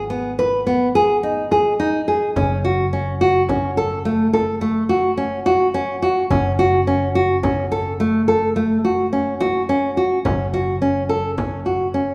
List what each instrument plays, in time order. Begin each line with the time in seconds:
Already playing: fretless electric bass G#1
0.10 nylon-string guitar B3
0.39 nylon-string guitar B4, frame drum
0.67 nylon-string guitar B3
0.95 nylon-string guitar G#4
1.23 nylon-string guitar D#4
1.51 nylon-string guitar G#4, frame drum
1.80 nylon-string guitar D#4
2.08 nylon-string guitar G#4
2.36 fretless electric bass F#1, nylon-string guitar C#4, frame drum
2.65 nylon-string guitar F#4
2.93 nylon-string guitar C#4, frame drum
3.21 nylon-string guitar F#4
3.49 nylon-string guitar C#4, frame drum
3.77 nylon-string guitar A4, frame drum
4.05 nylon-string guitar A3
4.33 nylon-string guitar A4, frame drum
4.61 nylon-string guitar A3
4.89 nylon-string guitar F#4
5.17 nylon-string guitar C#4
5.46 nylon-string guitar F#4, frame drum
5.74 nylon-string guitar C#4
6.02 nylon-string guitar F#4
6.30 fretless electric bass F#1, nylon-string guitar C#4, frame drum
6.59 nylon-string guitar F#4
6.87 nylon-string guitar C#4
7.15 nylon-string guitar F#4
7.43 nylon-string guitar C#4, frame drum
7.72 nylon-string guitar A4, frame drum
8.00 nylon-string guitar A3
8.28 nylon-string guitar A4
8.56 nylon-string guitar A3
8.85 nylon-string guitar F#4
9.13 nylon-string guitar C#4
9.40 nylon-string guitar F#4, frame drum
9.69 nylon-string guitar C#4
9.97 nylon-string guitar F#4
10.25 fretless electric bass F#1, nylon-string guitar C#4, frame drum
10.54 nylon-string guitar F#4
10.82 nylon-string guitar C#4
11.09 nylon-string guitar A4
11.38 nylon-string guitar C#4, frame drum
11.66 nylon-string guitar F#4, frame drum
11.94 nylon-string guitar C#4